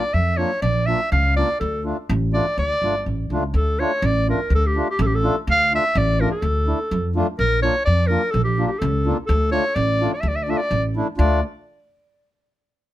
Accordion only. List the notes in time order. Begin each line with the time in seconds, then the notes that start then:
0.38 A#3 D4 F4
0.87 A#3 D4 F4
1.37 A#3 D4 F4
1.85 A3 D4 F4
2.33 A3 D4 F4
2.83 A3 D4 F4
3.32 A3 D4 F4
3.80 A3 D4 F4
4.28 A3 D4 F4
4.76 A3 D4 F4
5.24 A3 D4 F4
5.73 A3 D4 F4
6.21 A3 D4 F4
6.67 A3 D4 E4
7.16 A3 D4 F4
7.63 A#3 D4 F4
8.10 A#3 D4 F4
8.59 A#3 D4 F4
9.06 A#3 D4 F4
9.52 A3 D4 F4
10.01 A3 D4 F4
10.49 A3 D4 F4
10.96 A3 D4 E4
11.18 A3 D4 F4